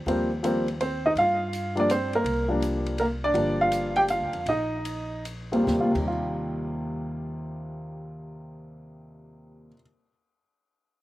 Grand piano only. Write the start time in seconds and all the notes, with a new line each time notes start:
0.07 F3 G3 A#3 C4
0.43 F3 G3 A#3 C4
0.81 C4 C5
1.06 D#4 D#5
1.18 F4 F5
1.75 F3 G3 A#3 D4
1.80 D5
1.91 C4 C5
2.15 A#3 A#4
2.48 F3 G3 A#3 D4
3.00 A#3 A#4
3.24 D4 D5
3.34 F3 G3 A#3 D4
3.61 F4 F5
3.96 G4 G5
4.10 F4 F5
4.49 D#4 D#5
5.51 D#2 G3 A#3 C4 F4
5.64 C3
5.72 G3
5.80 D#2 F4
5.91 C3
5.99 G3
6.08 F4